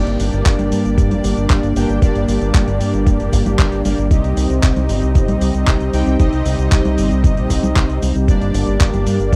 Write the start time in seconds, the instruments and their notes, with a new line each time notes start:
Already playing: analog polysynth G2 A#3 D4 G4 D5, analog synth pad G3 A#3 D4
0.07 fingered electric bass G1, closed hi-hat, cabasa
0.19 fingered electric bass G1, open hi-hat, cabasa
0.33 fingered electric bass G1, closed hi-hat, cabasa
0.46 fingered electric bass G1, kick, clap, closed hi-hat, cabasa
0.59 fingered electric bass G1, closed hi-hat, high conga, cabasa
0.72 fingered electric bass G2, open hi-hat, cabasa
0.85 fingered electric bass G1, closed hi-hat, cabasa
0.98 fingered electric bass G2, kick, closed hi-hat, cabasa
1.11 fingered electric bass F1, closed hi-hat, high conga, cabasa
1.24 fingered electric bass G1, open hi-hat, cabasa
1.37 fingered electric bass G1, closed hi-hat, cabasa
1.50 fingered electric bass G1, kick, clap, closed hi-hat, cabasa
1.63 fingered electric bass G1, closed hi-hat, cabasa
1.76 fingered electric bass G1, analog polysynth G2 A#3 D4 G4 G5, open hi-hat, cabasa
1.89 fingered electric bass G1, closed hi-hat, cabasa
2.02 fingered electric bass G1, analog polysynth G2 A#3 D4 G4 D5, kick, closed hi-hat, cabasa
2.15 fingered electric bass G1, closed hi-hat, cabasa
2.28 fingered electric bass G1, open hi-hat, cabasa
2.41 fingered electric bass G1, closed hi-hat, cabasa
2.54 fingered electric bass G1, kick, clap, closed hi-hat, cabasa
2.67 fingered electric bass G1, closed hi-hat, high conga, cabasa
2.80 fingered electric bass G2, open hi-hat, cabasa
2.93 fingered electric bass G1, closed hi-hat, cabasa
3.06 fingered electric bass G2, kick, closed hi-hat, cabasa
3.19 fingered electric bass F1, closed hi-hat, cabasa
3.33 fingered electric bass G1, kick, open hi-hat, cabasa
3.46 fingered electric bass G1, closed hi-hat, high conga, cabasa
3.59 fingered electric bass G1, kick, clap, closed hi-hat, cabasa
3.72 fingered electric bass G1, closed hi-hat, cabasa
3.85 fingered electric bass G1, analog polysynth A#3 D4 G4 D5, open hi-hat, high conga, cabasa
3.98 fingered electric bass G1, closed hi-hat, cabasa
4.11 fingered electric bass C2, analog polysynth C3 C4 D#4 G4 D#5, analog synth pad C4 D#4, kick, closed hi-hat, cabasa
4.24 fingered electric bass C2, closed hi-hat, cabasa
4.37 fingered electric bass C2, open hi-hat, cabasa
4.50 fingered electric bass C2, closed hi-hat, cabasa
4.63 fingered electric bass C2, kick, clap, closed hi-hat, cabasa
4.76 fingered electric bass C2, closed hi-hat, high conga, cabasa
4.89 fingered electric bass G1, open hi-hat, cabasa
5.02 fingered electric bass C2, closed hi-hat, cabasa
5.15 fingered electric bass G1, kick, closed hi-hat, cabasa
5.28 fingered electric bass A#1, closed hi-hat, high conga, cabasa
5.41 fingered electric bass C2, open hi-hat, cabasa
5.54 fingered electric bass C2, closed hi-hat, cabasa
5.67 fingered electric bass C2, kick, clap, closed hi-hat, cabasa
5.81 fingered electric bass C2, closed hi-hat, cabasa
5.93 fingered electric bass C2, analog polysynth C3 C4 D#4 G4 G5, open hi-hat, cabasa
6.06 fingered electric bass C2, closed hi-hat, cabasa
6.19 fingered electric bass C2, analog polysynth C3 C4 D#4 G4 D#5, kick, closed hi-hat, cabasa
6.33 fingered electric bass C2, closed hi-hat, cabasa
6.46 fingered electric bass C2, open hi-hat, cabasa
6.58 fingered electric bass C2, closed hi-hat, cabasa
6.72 fingered electric bass C2, kick, clap, closed hi-hat, cabasa
6.85 fingered electric bass C2, closed hi-hat, high conga, cabasa
6.98 fingered electric bass G1, open hi-hat, cabasa
7.11 fingered electric bass C2, closed hi-hat, cabasa
7.24 fingered electric bass G1, kick, closed hi-hat, cabasa
7.37 fingered electric bass A#1, closed hi-hat, cabasa
7.50 fingered electric bass C2, kick, open hi-hat, cabasa
7.63 closed hi-hat, high conga, cabasa
7.76 fingered electric bass C2, kick, clap, closed hi-hat, cabasa
7.89 fingered electric bass C2, closed hi-hat, cabasa
8.02 fingered electric bass C2, open hi-hat, high conga, cabasa
8.15 fingered electric bass C2, closed hi-hat, cabasa
8.28 fingered electric bass G1, analog polysynth G2 A#3 D4 G4 D5, analog synth pad A#3 D4, kick, closed hi-hat, cabasa
8.41 fingered electric bass G1, closed hi-hat, cabasa
8.54 fingered electric bass G1, open hi-hat, cabasa
8.67 fingered electric bass G1, closed hi-hat, cabasa
8.80 fingered electric bass G1, kick, clap, closed hi-hat, cabasa
8.93 fingered electric bass G1, closed hi-hat, high conga, cabasa
9.06 fingered electric bass G2, open hi-hat, cabasa
9.20 fingered electric bass G1, closed hi-hat, cabasa
9.32 fingered electric bass G2, kick, closed hi-hat, cabasa